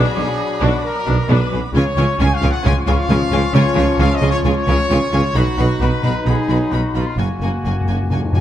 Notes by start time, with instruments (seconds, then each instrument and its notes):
Already playing: french horn section F#3 D4, viola section D4, clarinet F#4, violin section F#4 B5, trumpet section G#4, flute section D6
0.16 double bass section B1, tuba B1, cello section B2, viola section C#4
0.61 double bass section B1, tuba B1, cello section B2, viola section D4, trumpet section F#4
0.84 trumpet section A#4
1.07 double bass section B1, tuba B1, cello section B2, viola section D4
1.29 double bass section B1, tuba B1, cello section B2, viola section D4, trumpet section B4
1.51 double bass section B1, tuba B1, cello section B2, viola section C#4
1.72 tuba C#2, double bass section C#2, cello section C#3, french horn section F3 C#4, viola section C#4, clarinet F4, violin section F4 G#5, trumpet section C#5, flute section C#6
1.96 tuba C#2, double bass section C#2, cello section C#3, viola section C#4, violin section F4 G#5
2.18 tuba C#2, double bass section C#2, cello section C#3, viola section C#4, violin section F4 G#5, trumpet section G#5
2.34 trumpet section F5
2.41 tuba C#2, double bass section C#2, cello section C#3, viola section C#4, violin section F4 G#5
2.49 trumpet section F#5
2.63 tuba C#2, double bass section C#2, cello section C#3, viola section C#4, violin section F4 G#5, trumpet section G#5
2.86 double bass section C#2, tuba C#2, cello section C#3, viola section C#4, violin section F4 G#5, trumpet section F5
3.08 double bass section C#2, tuba C#2, cello section C#3, viola section C#4, violin section F4 G#5
3.31 double bass section C#2, tuba C#2, cello section C#3, viola section C#4, violin section F4 G#5
3.53 double bass section C#2, tuba C#2, cello section C#3, viola section C#4, violin section F4 G#5, trumpet section C#5
3.75 double bass section C#2, tuba C#2, cello section C#3, viola section C#4, violin section F4 G#5
3.98 double bass section C#2, tuba C#2, cello section C#3, viola section C#4, violin section F4 G#5, trumpet section F5
4.14 trumpet section D#5
4.20 double bass section C#2, tuba C#2, cello section C#3, viola section C#4, violin section F4 G#5
4.30 trumpet section C#5
4.43 double bass section C#2, tuba C#2, cello section C#3, viola section C#4, violin section F4 G#5, trumpet section C#5
4.67 double bass section C#2, tuba C#2, cello section C#3, viola section C#4, violin section F4 G#5
4.90 double bass section C#2, tuba C#2, cello section C#3, viola section C#4, violin section F4 G#5
5.12 double bass section C#2, tuba C#2, cello section C#3, viola section C#4, violin section F4 G#5
5.35 double bass section B1, tuba B1, cello section B2, french horn section F#3 D#4, clarinet D#4, viola section D#4, violin section F#4 B5, trumpet section F#4, flute section B5
5.57 double bass section B1, tuba B1, cello section B2, viola section D#4, violin section F#4 B5
5.79 double bass section B1, tuba B1, cello section B2, viola section D#4, violin section F#4 B5, trumpet section B4
6.02 double bass section B1, tuba B1, cello section B2, viola section D#4, violin section F#4 B5
6.25 double bass section B1, tuba B1, cello section B2, viola section D#4, violin section F#4 B5, trumpet section G#4
6.48 double bass section B1, tuba B1, cello section B2, viola section D#4, violin section F#4 B5
6.71 double bass section B1, tuba B1, cello section B2, viola section D#4, trumpet section F#4, violin section F#4 B5
6.94 double bass section B1, tuba B1, cello section B2, viola section D#4, trumpet section F4, violin section F#4 B5
7.16 double bass section F#1, tuba F#1, cello section F#2, timpani F#2, french horn section G#3 A#3, clarinet A#3, viola section A#3, trumpet section F#4, violin section F#4 G#5, flute section G#5
7.25 timpani F#2
7.33 timpani F#2
7.40 double bass section F#1, tuba F#1, timpani F#2, cello section F#2, viola section A#3, violin section F#4 G#5
7.48 timpani F#2
7.57 timpani F#2
7.64 tuba F#1, double bass section F#1, timpani F#2, cello section F#2, viola section A#3, violin section F#4 G#5
7.72 timpani F#2
7.80 timpani F#2
7.87 double bass section F#1, tuba F#1, timpani F#2, cello section F#2, viola section A#3, violin section F#4 G#5
7.94 timpani F#2
8.02 timpani F#2
8.10 double bass section F#1, tuba F#1, timpani F#2, cello section F#2, viola section A#3, violin section F#4 G#5
8.17 timpani F#2
8.25 timpani F#2
8.33 double bass section F#1, tuba F#1, timpani F#2, cello section F#2, viola section A#3, violin section F#4 G#5